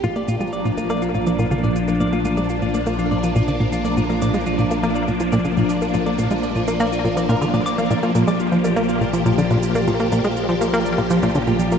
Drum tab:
SH |xxxxxxxxxxxxxxxx|xxxxxxxxxxxxxxxx|xxxxxxxxxxxxxxxx|xxxxxxxxxxxxxxxx|
T1 |o--o--o--o--o--o|--o--o--o--o--o-|-o--o--o--o--o--|o--o--o--o--o--o|

SH |xxxxxxxxxxxxxxxx|xxxxxxxxxxxxxxxx|
T1 |o--o--o--o--o--o|--o--o--o--o--o-|